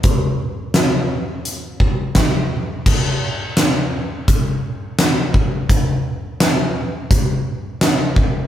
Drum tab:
CC |--------|x-------|--------|
HH |x-x-x-x-|--x-x-x-|x-x-x-x-|
SD |--o---o-|--o---o-|--o---o-|
BD |o----oo-|o---o--o|o---o--o|